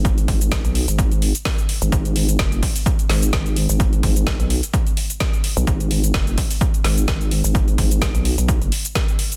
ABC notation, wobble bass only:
X:1
M:4/4
L:1/16
Q:"Swing 16ths" 1/4=128
K:G#m
V:1 name="Wobble bass" clef=bass
G,,,2 G,,,3 B,,,2 G,,,4 z4 G,,, | G,,,4 F,,,2 z4 G,,,2 G,,,3 G,,,- | G,,,2 G,,,3 B,,,2 z8 B,,, | G,,,4 F,,,2 z4 G,,,2 G,,,3 G,,,- |
G,,,2 G,,,3 B,,,2 B,,,2 F,,, z6 |]